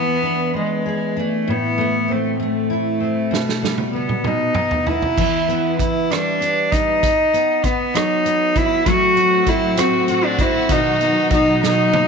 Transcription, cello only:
0.00 0.57 B3 medium
0.57 1.22 G#3 medium
1.20 1.52 A3 medium
1.50 2.13 B3 medium
2.11 2.41 A3 medium
2.43 3.91 A3 medium
3.94 4.28 B3 medium
4.27 4.89 D#4 medium
4.87 5.79 E4 medium
5.80 6.12 E4 medium
6.11 6.73 D4 medium
6.72 7.66 D#4 medium
7.65 7.97 B3 medium
7.95 8.58 D#4 medium
8.56 8.89 E4 medium
8.88 9.50 F#4 loud
9.48 9.79 E4 loud
9.78 10.09 F#4 medium
10.09 10.26 F#4 medium
10.25 10.42 D4 medium
10.41 10.72 E4 medium
10.71 11.32 D#4 medium
11.34 11.62 D#4 medium
11.64 12.08 D#4 medium

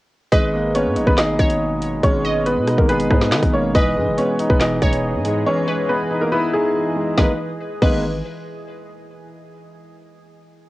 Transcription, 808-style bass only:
0.32 0.87 G#1 loud
0.86 0.98 G#2 loud
0.96 1.06 G#1 loud
1.07 1.38 G#1 loud
1.39 2.01 G#1 loud
2.03 2.58 G#1 loud
2.57 2.77 B2 loud
2.78 3.09 G#1 loud
3.11 3.33 G#2 loud
3.32 3.42 D#3 loud
3.43 3.74 G#1 loud
3.75 3.98 E1 loud
3.96 4.08 G#2 loud
4.07 4.17 E1 loud
4.50 4.81 E1 loud
4.82 5.16 E1 loud
5.14 5.45 G#2 loud
7.18 7.30 G#1 loud
7.82 8.22 G#1 loud

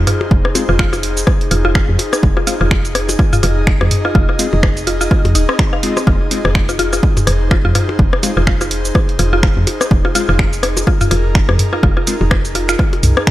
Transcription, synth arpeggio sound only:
0.07 0.11 F4 medium
0.69 0.73 F4 medium
0.79 0.85 F4 loud
0.93 0.96 F4 medium
1.51 1.57 F4 medium
1.65 1.69 F4 loud
1.75 1.79 F4 medium
2.37 2.41 F4 medium
2.47 2.53 F4 loud
2.61 2.64 F4 medium
3.19 3.25 F4 medium
3.33 3.37 F4 loud
3.43 3.47 F4 medium
4.05 4.09 F4 medium
4.15 4.21 F4 loud
4.29 4.31 F4 medium
4.87 4.93 F4 medium
5.01 5.05 F4 loud
5.11 5.15 F4 medium
5.35 5.44 D#4 medium
5.49 5.53 C4 loud
5.73 5.77 F5 medium
5.97 6.00 C4 medium
6.07 6.11 F4 medium
6.69 6.73 F4 medium
6.79 6.85 F4 loud
6.93 6.96 F4 medium
7.51 7.57 F4 medium
7.65 7.69 F4 loud
7.75 7.79 F4 medium
8.37 8.41 F4 medium
8.47 8.53 F4 loud
8.61 8.64 F4 medium
9.19 9.25 F4 medium
9.33 9.37 F4 loud
9.43 9.47 F4 medium
10.05 10.09 F4 medium
10.15 10.21 F4 loud
10.29 10.32 F4 medium
10.87 10.93 F4 medium
11.01 11.05 F4 loud
11.11 11.15 F4 medium
11.73 11.77 F4 medium
11.83 11.89 F4 loud
11.97 12.00 F4 medium
12.55 12.61 F4 medium
12.69 12.73 F4 loud
12.79 12.83 F4 medium

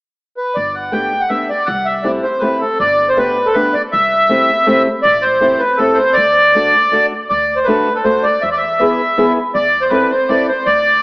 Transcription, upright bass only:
0.57 1.05 G1 medium
1.68 2.16 C2 medium
2.80 3.29 G1 medium
3.93 4.42 C2 medium
5.05 5.54 A1 medium
6.17 6.66 D2 medium
7.30 7.79 D2 medium
8.43 8.92 E2 medium
9.55 10.03 E2 medium
10.66 11.03 D2 medium

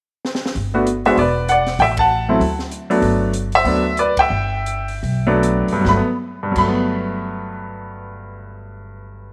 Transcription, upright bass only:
0.55 1.14 G1 medium
1.17 1.76 E1 medium
1.79 2.37 A1 medium
2.40 2.99 D2 medium
3.02 3.61 G1 medium
3.65 4.27 D2 medium
4.30 4.99 G1 medium
5.03 5.63 B1 medium
5.67 muted upright bass stroke soft
5.85 5.99 G1 medium
6.55 9.33 G1 medium

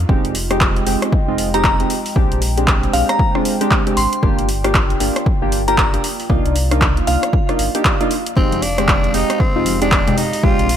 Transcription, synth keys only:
0.09 0.35 G#3 medium
0.09 0.35 C4 medium
0.09 0.35 D#4 medium
0.09 0.35 G4 loud
0.51 0.84 G#3 medium
0.51 0.84 C4 medium
0.51 0.84 D#4 medium
0.51 0.84 G4 medium
0.87 1.12 G#3 medium
0.87 1.12 C4 medium
0.87 1.12 D#4 medium
0.87 1.12 G4 medium
1.28 1.49 G#3 medium
1.28 1.49 C4 medium
1.28 1.49 D#4 medium
1.28 1.49 F4 medium
1.54 1.75 G#3 medium
1.54 1.75 C4 medium
1.54 1.75 D#4 medium
1.54 1.75 G4 loud
1.80 1.94 G#3 medium
1.80 1.94 C4 medium
1.80 1.94 D#4 medium
1.80 1.94 G4 medium
2.16 2.42 G#3 medium
2.16 2.42 C4 medium
2.16 2.42 D4 medium
2.16 2.42 G4 loud
2.58 2.91 G#3 medium
2.58 2.91 C4 medium
2.58 2.91 D4 medium
2.58 2.91 G4 medium
2.93 3.19 G#3 medium
2.93 3.19 C4 medium
2.93 3.19 D4 medium
2.93 3.19 G4 medium
3.35 3.56 G#3 medium
3.35 3.56 C4 medium
3.35 3.56 D4 medium
3.35 3.56 F4 medium
3.61 3.82 G#3 medium
3.61 3.82 C4 medium
3.61 3.82 D4 medium
3.61 3.82 G4 loud
3.87 4.01 G#3 medium
3.87 4.01 C4 medium
3.87 4.01 D4 medium
3.87 4.01 G4 medium
4.23 4.48 A#3 medium
4.23 4.48 D4 medium
4.23 4.48 F4 medium
4.23 4.48 G4 loud
4.64 4.98 A#3 medium
4.64 4.98 D4 medium
4.64 4.98 F4 medium
4.64 4.98 G4 medium
5.00 5.26 A#3 medium
5.00 5.26 D4 medium
5.00 5.26 F4 medium
5.00 5.26 G4 medium
5.42 5.63 A#3 medium
5.42 5.63 D4 medium
5.42 5.63 F4 medium
5.42 5.63 G4 medium
5.68 5.89 A#3 medium
5.68 5.89 D4 medium
5.68 5.89 F4 medium
5.68 5.89 G4 loud
5.94 6.08 A#3 medium
5.94 6.08 D4 medium
5.94 6.08 F4 medium
5.94 6.08 G4 medium
6.30 6.55 A#3 medium
6.30 6.55 D4 medium
6.30 6.55 D#4 medium
6.30 6.55 F4 loud
6.71 7.05 A#3 medium
6.71 7.05 D4 medium
6.71 7.05 D#4 medium
6.71 7.05 F4 medium
7.07 7.33 A#3 medium
7.07 7.33 D4 medium
7.07 7.33 D#4 medium
7.07 7.33 F4 medium
7.49 7.70 A#3 medium
7.49 7.70 D4 medium
7.49 7.70 D#4 medium
7.49 7.70 F4 medium
7.75 7.97 A#3 medium
7.75 7.97 D4 medium
7.75 7.97 D#4 medium
7.75 7.97 G4 medium
8.01 8.14 A#3 medium
8.01 8.14 D4 medium
8.01 8.14 D#4 medium
8.01 8.14 F4 loud
8.37 8.62 G#3 medium
8.37 8.62 C4 medium
8.37 8.62 D#4 medium
8.37 8.62 G4 loud
8.78 9.12 D#3 medium
8.78 9.12 G#3 medium
8.78 9.12 C4 medium
8.78 9.12 G4 medium
9.14 9.40 G#3 medium
9.14 9.40 C4 medium
9.14 9.40 D#4 medium
9.14 9.40 G4 medium
9.56 9.77 G#3 medium
9.56 9.77 C4 medium
9.56 9.77 D#4 medium
9.56 9.77 F4 medium
9.82 10.03 G#3 medium
9.82 10.03 C4 medium
9.82 10.03 D#4 medium
9.82 10.03 G4 loud
10.07 10.21 G#3 medium
10.07 10.21 C4 medium
10.07 10.21 D#4 medium
10.07 10.21 G4 medium
10.43 10.69 G#3 medium
10.43 10.69 C4 medium
10.43 10.69 D4 medium
10.43 10.69 G4 loud

